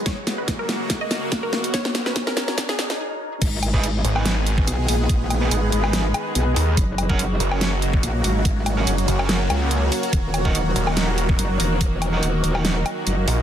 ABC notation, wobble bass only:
X:1
M:4/4
L:1/8
Q:"Swing 16ths" 1/4=143
K:G#m
V:1 name="Wobble bass" clef=bass
z8 | z8 | G,,,3 z3 B,,, A,,,- | A,,,2 G,,, G,,,2 z B,,, z |
F,,,3 z3 A,,, G,,,- | G,,,2 F,,, z4 z | D,,,3 z3 F,,, E,,,- | E,,,2 D,,, D,,,2 z F,,, z |]